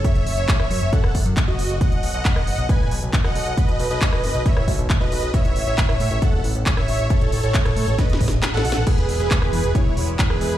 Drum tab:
CC |------------------------------------------------|------------------------------------------------|------------------------------------------------|------------------------------------------------|
HH |x--x--o--x--x-----o--x--x-----o--x--x-----o--x--|x--x--o-----x-----o--x--x-----o--x--x-----o--x--|x--x--o--x--x-----o--x--x-----o--x--x-----o--x--|x--x--o--x--x-----o--x--x-----o--x--x-----o--x--|
CP |------------x-----------------------x-----------|------------x-----------------------x-----------|------------x-----------------------x-----------|------------x-----------------------x-----------|
SD |---------------r-----------r--------------------|---------------r-----------------------r--------|---------------r-----------r--------------------|---------------r-----------------------r--------|
BD |o-----------o-----------o-----o-----o-----------|o-----------o-----------o-----------o-----------|o-----------o-----------o-----o-----o-----------|o-----------o-----------o-----------o-----------|

CC |------------------------------------------------|x-----------------------------------------------|
HH |x--x--o--x--x--x--o--x--x--x--o--x--x-----o--x--|x--x--o--x--x-----o--x--x-----o--x--x-----o--x--|
CP |------------x-----------------------x-----------|------------x-----------------------x-----------|
SD |---------------r--------o---o---o---o---o---o---|---------------r-----------------------r--------|
BD |o-----------o-----------o-----o-----------------|o-----------o-----------o-----------o-----------|